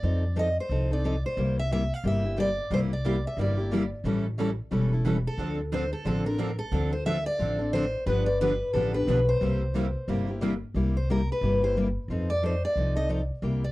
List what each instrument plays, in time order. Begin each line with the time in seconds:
Already playing: steel-string acoustic guitar D5
0.03 upright bass F2, steel-string acoustic guitar F3 C4 D#4 A4
0.36 steel-string acoustic guitar F3 C4 D#4 A4 D#5
0.60 steel-string acoustic guitar C5
0.69 upright bass C2, steel-string acoustic guitar F3 C4 D#4 A4
0.91 steel-string acoustic guitar C4 D#4 A4 D5
1.04 steel-string acoustic guitar F3 C4 D#4 A4
1.26 steel-string acoustic guitar C5
1.37 upright bass C2, steel-string acoustic guitar C3 G3 A#3 E4 G4
1.59 steel-string acoustic guitar E5
1.71 steel-string acoustic guitar C3 G3 A#3 E4 G4 E5
1.94 steel-string acoustic guitar F5
2.04 upright bass G1, steel-string acoustic guitar C3 G3 A#3 E4 G4 E5
2.24 steel-string acoustic guitar A#3 E4 G4
2.37 steel-string acoustic guitar C3 G3 A#3 E4 G4 D5
2.70 upright bass C2, steel-string acoustic guitar C3 G3 A#3 E4 G4 C5
2.93 steel-string acoustic guitar D5
3.05 steel-string acoustic guitar C3 G3 A#3 E4 G4
3.27 steel-string acoustic guitar E5
3.37 upright bass G1, steel-string acoustic guitar C3 G3 A#3 E4 G4
3.41 steel-string acoustic guitar D5
3.57 steel-string acoustic guitar A#3 E4 G4
3.71 steel-string acoustic guitar C3 G3 A#3 E4 G4
4.04 upright bass A1, steel-string acoustic guitar E3 G3 C#4 E4 A4
4.38 steel-string acoustic guitar E3 G3 C#4 E4 A4
4.71 upright bass E1, steel-string acoustic guitar E3 G3 C#4 E4 A4
4.92 steel-string acoustic guitar C#4 E4 A4
5.05 steel-string acoustic guitar E3 G3 C#4 E4 A4
5.27 steel-string acoustic guitar A4
5.37 upright bass D2, steel-string acoustic guitar D3 F3 C4 D4 A4
5.72 steel-string acoustic guitar D3 F3 C4 D4 A4 C5
5.93 steel-string acoustic guitar A4
6.05 upright bass A1, steel-string acoustic guitar D3 F3 C4 D4 A4
6.25 steel-string acoustic guitar C4 D4 A4 A#4
6.38 steel-string acoustic guitar D3 F3 C4 D4 A4
6.59 steel-string acoustic guitar A4
6.72 upright bass D2, steel-string acoustic guitar D3 F3 C4 D4 A4
6.93 steel-string acoustic guitar C5
7.06 steel-string acoustic guitar D3 F3 C4 D4 A4 E5
7.26 steel-string acoustic guitar D5
7.38 upright bass A1, steel-string acoustic guitar D3 F3 C4 D4 A4
7.59 steel-string acoustic guitar C4 D4 A4
7.73 steel-string acoustic guitar D3 F3 C4 D4 A4 C5
8.06 upright bass G1, steel-string acoustic guitar D3 F3 B3 D4 G4 B4
8.26 steel-string acoustic guitar D5
8.41 steel-string acoustic guitar D3 F3 B3 D4 G4 B4
8.73 upright bass A1, steel-string acoustic guitar D3 F3 B3 D4 G4 A4
8.93 steel-string acoustic guitar B3 D4 G4 B4
9.07 upright bass B1, steel-string acoustic guitar D3 F3 B3 D4 G4
9.29 steel-string acoustic guitar C5
9.41 upright bass C2, steel-string acoustic guitar C3 G3 A#3 E4 G4
9.74 steel-string acoustic guitar C3 G3 A#3 E4 G4
10.08 upright bass G1, steel-string acoustic guitar C3 G3 A#3 E4 G4
10.27 steel-string acoustic guitar A#3 E4 G4
10.41 steel-string acoustic guitar C3 G3 A#3 E4 G4
10.74 upright bass C2, steel-string acoustic guitar C3 G3 A#3 E4 G4
10.97 steel-string acoustic guitar C5
11.10 steel-string acoustic guitar C3 G3 A#3 E4 G4 A#4
11.32 steel-string acoustic guitar B4
11.41 upright bass G1, steel-string acoustic guitar C3 G3 A#3 E4 G4
11.62 steel-string acoustic guitar A#3 E4 G4 C5
11.77 steel-string acoustic guitar C3 G3 A#3 E4 G4
12.08 upright bass F2, steel-string acoustic guitar F3 C4 D#4 A4
12.30 steel-string acoustic guitar D5
12.43 steel-string acoustic guitar F3 C4 D#4 A4 C5
12.65 steel-string acoustic guitar D5
12.75 upright bass C2, steel-string acoustic guitar F3 C4 D#4 A4
12.95 steel-string acoustic guitar C4 D#4 A4 D#5
13.09 steel-string acoustic guitar F3 C4 D#4 A4
13.42 upright bass C2, steel-string acoustic guitar C3 G3 A#3 E4 G4
13.64 steel-string acoustic guitar D5